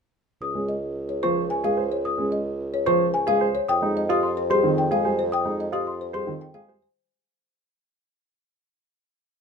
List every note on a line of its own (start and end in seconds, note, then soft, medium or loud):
0.42 3.54 C#2 medium
0.42 0.59 D#6 medium
0.55 0.73 G#3 soft
0.55 0.73 C#4 soft
0.69 0.86 D#5 soft
1.09 1.27 C#5 soft
1.23 1.41 F3 medium
1.23 1.41 C5 medium
1.23 1.41 C#6 medium
1.50 1.68 G#5 medium
1.64 1.82 G#3 medium
1.64 1.82 G#4 medium
1.64 1.82 F5 medium
1.77 1.95 C5 medium
1.92 2.09 C#5 medium
2.05 2.23 D#6 medium
2.18 2.37 G#3 medium
2.18 2.36 C#4 medium
2.32 2.50 D#5 medium
2.74 2.91 C#5 medium
2.86 3.05 F3 medium
2.86 3.04 C5 medium
2.86 3.05 C5 medium
2.86 3.05 C#6 medium
3.14 3.32 G#5 medium
3.27 3.46 G#3 medium
3.27 3.45 G#4 medium
3.27 3.46 F5 medium
3.41 3.59 C5 medium
3.55 3.73 C#5 medium
3.69 6.81 F2 medium
3.69 3.87 G5 medium
3.69 3.86 D#6 medium
3.82 4.00 G#3 medium
3.82 4.00 D#4 medium
3.97 4.14 D#5 medium
4.09 4.27 F4 medium
4.09 4.28 G4 medium
4.09 4.28 D#6 medium
4.23 4.41 C6 medium
4.37 4.55 C5 medium
4.50 4.68 G3 medium
4.50 4.68 G#4 medium
4.50 4.68 C5 medium
4.50 4.68 C6 medium
4.63 4.82 D#3 medium
4.63 4.82 C4 medium
4.78 4.96 G5 medium
4.91 5.09 G#3 medium
4.91 5.09 G#4 medium
4.91 5.09 F5 medium
5.05 5.23 G3 medium
5.05 5.23 C5 medium
5.05 5.23 G#5 medium
5.19 5.37 C5 medium
5.32 5.51 G5 medium
5.32 5.50 D#6 medium
5.45 5.64 G#3 medium
5.45 5.63 D#4 medium
5.60 5.78 D#5 medium
5.72 5.91 F4 medium
5.72 5.91 G4 medium
5.72 5.91 D#6 medium
5.87 6.05 C6 medium
6.01 6.19 C5 medium
6.13 6.32 G3 medium
6.13 6.32 G#4 medium
6.13 6.32 C5 medium
6.13 6.32 C6 medium
6.27 6.45 D#3 medium
6.27 6.45 C4 medium
6.41 6.59 G5 medium
6.54 6.72 G#3 medium
6.54 6.73 G#4 medium
6.54 6.73 F5 medium
6.68 6.86 G3 medium
6.68 6.86 C5 medium
6.68 6.87 G#5 medium
6.82 7.00 C5 medium